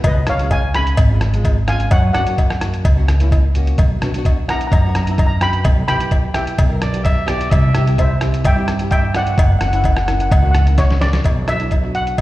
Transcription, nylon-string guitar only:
0.28 0.35 G#3 medium
0.28 0.36 C#4 medium
0.28 0.36 F4 medium
0.41 0.61 G#3 medium
0.41 0.62 C#4 medium
0.41 0.62 F4 medium
0.75 0.96 G#3 medium
0.75 0.96 C#4 medium
0.75 0.96 D#4 medium
1.10 1.24 G#3 medium
1.10 1.24 C#4 medium
1.10 1.24 F4 medium
1.33 1.54 G#3 medium
1.33 1.54 C#4 medium
1.33 1.55 F4 medium
1.67 1.91 G#3 medium
1.67 1.91 C#4 medium
1.67 1.92 F4 medium
2.14 2.22 A#3 medium
2.14 2.22 C#4 medium
2.14 2.22 F#4 medium
2.26 2.47 A#3 medium
2.26 2.48 C#4 medium
2.26 2.48 F#4 medium
2.60 2.82 A#3 medium
2.60 2.82 C#4 medium
2.60 2.83 F#4 medium
2.95 3.10 A#3 medium
2.95 3.10 C#4 medium
2.95 3.10 F#4 loud
3.20 3.41 A#3 medium
3.20 3.41 C#4 medium
3.20 3.41 E4 medium
3.55 3.78 A#3 medium
3.55 3.78 C#4 medium
3.55 3.79 F#4 loud
4.02 4.09 B3 medium
4.02 4.09 D4 medium
4.02 4.09 F#4 loud
4.15 4.35 B3 medium
4.15 4.35 D4 medium
4.15 4.36 F#4 loud
4.49 4.70 B3 medium
4.49 4.70 D4 medium
4.49 4.70 E4 medium
4.85 4.98 B3 medium
4.85 4.98 D4 medium
4.85 4.99 F#4 medium
5.08 5.28 B3 medium
5.08 5.29 D4 medium
5.08 5.29 E4 medium
5.42 5.65 B3 medium
5.42 5.65 D4 medium
5.42 5.66 F#4 medium
5.89 5.96 B3 medium
5.89 5.96 E4 medium
5.89 5.96 G4 medium
6.00 6.21 B3 medium
6.00 6.21 E4 medium
6.00 6.21 G4 medium
6.34 6.56 B3 medium
6.34 6.56 E4 medium
6.34 6.56 G4 medium
6.68 6.83 B3 medium
6.68 6.83 E4 medium
6.68 6.84 A#4 medium
6.92 7.14 B3 medium
6.92 7.14 E4 medium
6.92 7.14 G4 medium
7.26 7.50 B3 medium
7.26 7.50 E4 medium
7.26 7.51 G4 loud
7.74 7.81 C4 medium
7.74 7.82 E4 medium
7.74 7.82 G4 loud
7.86 8.07 C4 medium
7.86 8.07 E4 medium
7.86 8.07 G4 medium
8.21 8.42 C4 medium
8.21 8.42 E4 medium
8.21 8.43 G4 medium
8.55 8.70 C4 medium
8.55 8.70 E4 medium
8.55 8.70 G4 medium
8.80 9.01 C4 medium
8.80 9.01 E4 medium
8.80 9.01 G4 medium
9.14 9.37 C4 medium
9.14 9.38 E4 medium
9.14 9.38 F#4 medium
9.60 9.68 A#3 medium
9.60 9.68 C#4 medium
9.60 9.69 F#4 medium
9.72 9.94 A#3 medium
9.72 9.94 C#4 medium
9.72 9.94 E4 medium
10.07 10.28 A#3 medium
10.07 10.29 C#4 medium
10.07 10.29 E4 medium
10.42 10.56 A#3 medium
10.42 10.57 C#4 medium
10.42 10.57 F#4 medium
10.66 10.87 A#3 medium
10.66 10.87 C#4 medium
10.66 10.88 E4 medium
10.99 11.24 A#3 medium
10.99 11.24 C#4 medium
10.99 11.24 F#4 loud
11.48 11.55 B3 medium
11.48 11.55 D4 medium
11.48 11.56 F#4 medium
11.59 11.73 B3 medium
11.59 11.74 D4 medium
11.59 11.74 E4 medium
11.82 12.18 B3 medium
11.82 12.18 D4 medium
11.82 12.18 F#4 medium

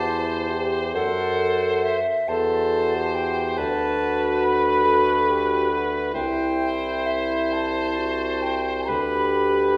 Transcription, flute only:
0.00 0.63 A5 medium
0.94 1.82 F#5 medium
1.83 2.30 E5 medium
2.28 3.16 A5 medium
3.15 3.59 G5 medium
3.58 4.45 A5 medium
4.43 5.87 B5 medium
6.14 7.08 G5 medium
7.06 7.54 E5 medium
7.53 8.44 A5 medium
8.43 8.89 G5 medium
8.88 9.76 B5 medium

